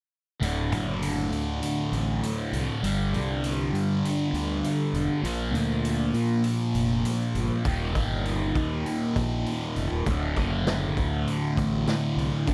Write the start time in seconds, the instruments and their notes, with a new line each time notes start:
0.40 fingered electric bass D1, distorted electric guitar D2 A2 D3, open hi-hat
0.72 fingered electric bass F#1, open hi-hat
1.02 open hi-hat
1.32 fingered electric bass D2, open hi-hat
1.63 open hi-hat
1.92 fingered electric bass A1, open hi-hat
2.23 open hi-hat
2.52 fingered electric bass C2, open hi-hat
2.83 fingered electric bass G1, distorted electric guitar G2 D3 G3, open hi-hat
3.13 fingered electric bass C2, open hi-hat
3.44 open hi-hat
3.73 fingered electric bass G2, open hi-hat
4.05 open hi-hat
4.33 fingered electric bass D2, open hi-hat
4.64 open hi-hat
4.93 fingered electric bass E1, open hi-hat
5.22 fingered electric bass A#1, distorted electric guitar A#2 F3 A#3, open hi-hat
5.54 fingered electric bass D2, open hi-hat
5.85 open hi-hat
6.14 fingered electric bass A#2, open hi-hat
6.44 open hi-hat
6.75 fingered electric bass F1, open hi-hat
7.05 open hi-hat
7.35 fingered electric bass G1, open hi-hat
7.64 fingered electric bass D#1, distorted electric guitar D#2 A#2 D#3, kick, open hi-hat
7.95 fingered electric bass G1, kick, open hi-hat
8.25 open hi-hat
8.55 fingered electric bass D#2, kick, open hi-hat
8.86 open hi-hat
9.16 fingered electric bass A#1, kick, open hi-hat
9.46 open hi-hat
9.76 fingered electric bass F1, open hi-hat
9.92 fingered electric bass D#1
10.06 fingered electric bass D1, distorted electric guitar D2 A2 D3, kick, open hi-hat
10.36 fingered electric bass F#1, kick, open hi-hat
10.67 snare, open hi-hat
10.97 fingered electric bass D2, kick, open hi-hat
11.27 open hi-hat
11.57 fingered electric bass A1, kick, open hi-hat
11.87 snare, open hi-hat
12.16 fingered electric bass C2, open hi-hat
12.47 fingered electric bass G1, distorted electric guitar G2 D3 G3, kick, open hi-hat